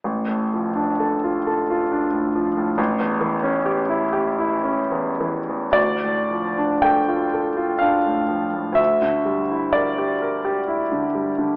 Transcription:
<<
  \new Staff \with { instrumentName = "Grand piano" } { \time 3/4 \key d \minor \tempo 4 = 63 r2. | r2. | d''4 g''4 f''4 | e''4 d''2 | }
  \new Staff \with { instrumentName = "Grand piano" } { \time 3/4 \key d \minor a,,16 a,16 f16 d'16 a'16 f'16 a'16 f'16 d'16 a,16 f16 a,16 | a,,16 e,16 e16 cis'16 g'16 e'16 g'16 e'16 cis'16 e,16 e16 e,16 | d,16 a,16 f16 d'16 a'16 f'16 a'16 f'16 d'16 a,16 f16 a,16 | d,16 d16 g16 e'16 bes'16 g'16 bes'16 g'16 e'16 d16 g16 d16 | }
>>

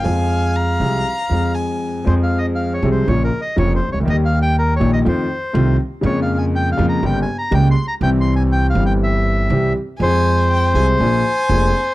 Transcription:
<<
  \new Staff \with { instrumentName = "Violin" } { \time 4/4 \key f \minor \tempo 4 = 121 aes''4 bes''2 aes''4 | r1 | r1 | r1 |
r1 | aes''4 g''8 aes''8 aes''2 | }
  \new Staff \with { instrumentName = "Bandoneon" } { \time 4/4 \key f \minor f''2. r4 | \tuplet 3/2 { c''8 f''8 ees''8 f''8 des''8 c''8 des''8 bes'8 ees''8 des''8 c''8 des''8 } | \tuplet 3/2 { ees''8 f''8 g''8 bes'8 des''8 ees''8 } c''4. r8 | \tuplet 3/2 { des''8 f''8 aes''8 g''8 f''8 bes''8 g''8 aes''8 bes''8 g''8 c'''8 bes''8 } |
\tuplet 3/2 { g''8 c'''8 aes''8 g''8 f''8 g''8 } e''4. r8 | c''1 | }
  \new Staff \with { instrumentName = "Grand piano" } { \clef bass \time 4/4 \key f \minor <f, f aes c' aes'>4. <c, c f aes c' aes'>8 r8 <f, f aes c' aes'>4. | <f, f aes c' aes'>4. <c, c f aes c' aes'>8 <bes,, bes, des f bes f'>8 r8 <f,, f, des f bes f'>8 r32 c,32 des,32 d,32 | <ees, ees g bes g'>4. <bes,, bes, ees g bes g'>8 <f, ees f a c' f'>8 r8 <c, c ees a c' f'>8 r8 | <f, des f aes bes f'>4. <f, des f aes bes f'>8 <g,, g, des g bes g'>8 r8 <des, des g bes g'>8 r8 |
<c, c e g c' g'>4. <g,, g, e g c' g'>4. <c, c e g c' g'>8 r8 | <f, f aes c' aes'>4. <c, c f aes c' aes'>8 <bes,, bes, f bes d' aes'>8 r8 <f,, f, f bes d' aes'>8 r8 | }
  \new Staff \with { instrumentName = "Upright bass" } { \clef bass \time 4/4 \key f \minor f,4~ f,16. r32 c,16. r8 r32 f,4~ f,16. r32 | f,4~ f,16. r32 c,16. r32 bes,,16. r8 r32 f,,16. r16 c,32 des,32 d,32 | ees,4~ ees,16. r32 bes,,16. r32 f,16. r8 r32 c,16. r8 r32 | f,4~ f,16. r32 f,16. r32 g,,16. r8 r32 des,16. r8 r32 |
c,4~ c,16. r32 g,,4~ g,,16. r32 c,16. r8 r32 | f,4~ f,16. r32 c,16. r32 bes,,16. r8 r32 f,,16. r8 r32 | }
>>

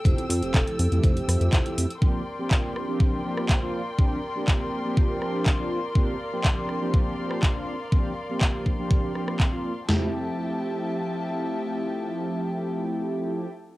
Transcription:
<<
  \new Staff \with { instrumentName = "String section" } { \time 4/4 \key f \major \tempo 4 = 122 << { <a' e'''>1 | <bes' d'' c'''>1~ | <bes' d'' c'''>1~ | <bes' d'' c'''>1~ |
<bes' d'' c'''>1 | <f e'' g'' a''>1~ | <f e'' g'' a''>1 | } \\ { g''1 | g''1~ | g''1 | f''1~ |
f''1 | r1 | r1 | } >> }
  \new Staff \with { instrumentName = "Vibraphone" } { \time 4/4 \key f \major c''4 a'4 c''4. r8 | r1 | r1 | r1 |
r1 | r1 | r1 | }
  \new Staff \with { instrumentName = "Analog polysynth" } { \time 4/4 \key f \major <f a c' e' g'>8 r16 <f a c' e' g'>4 <f a c' e' g'>8. <f a c' e' g'>8. <f a c' e' g'>8 r16 | <f bes c' d' g'>8 r16 <f bes c' d' g'>4 <f bes c' d' g'>8. <f bes c' d' g'>8. <f bes c' d' f'>8 r16 | <f bes c' d' g'>8 r16 <f bes c' d' g'>4 <f bes c' d' g'>8. <f bes c' d' g'>8. <f bes c' d' f'>8 r16 | <f bes c' d' g'>8 r16 <f bes c' d' g'>4 <f bes c' d' g'>8. <f bes c' d' g'>8. <f bes c' d' f'>8 r16 |
<f bes c' d' g'>8 r16 <f bes c' d' g'>4 <f bes c' d' g'>8. <f bes c' d' g'>8. <f bes c' d' f'>8 r16 | <f a c' e' g'>1~ | <f a c' e' g'>1 | }
  \new Staff \with { instrumentName = "Analog synth bass" } { \clef bass \time 4/4 \key f \major f,,16 r16 f,16 f,,16 f,,16 r16 f,16 f,16 f,,16 r16 f,16 f,16 f,,16 r16 f,16 r16 | r1 | r1 | r1 |
r1 | r1 | r1 | }
  \new DrumStaff \with { instrumentName = "Drums" } \drummode { \time 4/4 <hh bd>16 hh16 hho16 hh16 <hc hh bd>16 hh16 hho16 hh16 <hh bd>16 hh16 <hho ss>16 hh16 <hc hh bd>16 hh16 hho16 hh16 | bd4 <hc bd>8 ss8 bd8. ss16 <hc bd>4 | bd4 <hc bd>4 bd8 ss8 <hc bd>4 | bd4 <hc bd>8 ss8 bd8. ss16 <hc bd>4 |
bd4 <hc bd>8 bd8 bd8 ss16 ss16 <hc bd>4 | <sn tomfh>4 r4 r4 r4 | r4 r4 r4 r4 | }
>>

